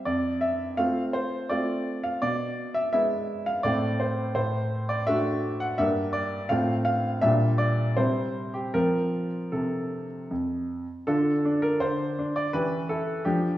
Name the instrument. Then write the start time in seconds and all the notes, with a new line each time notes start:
grand piano
0.05 F2 D5
0.41 E5
0.77 A3 C4 F4 F5
1.13 C5
1.49 A3 C4 F4 D5
2.04 F5
2.22 B2 D5
2.74 E5
2.93 G#3 B3 E4 E5
3.46 F5
3.63 A2 A3 C4 E4 D5
4.00 C5
4.35 A2 C5
4.89 D5
5.07 A3 D4 F#4 E5
5.60 F#5
5.78 G2 A#3 D4 G4 E5
6.13 D5
6.49 A2 A3 C4 F4 F5
6.85 F5
7.21 A#2 G3 D4 F4 E5
7.58 D5
7.97 C3 G3 C4 E4 C5
8.54 G4
8.74 F3 C4 F4 A#4
9.52 C3 A4
10.31 F2
11.07 D3 D4 F4 A4
11.45 D4
11.62 A#4
11.80 D3 C5
12.19 D4
12.36 D5
12.53 E3 C#4 G4 B4
12.89 E4 A4
13.25 F3 D4 G4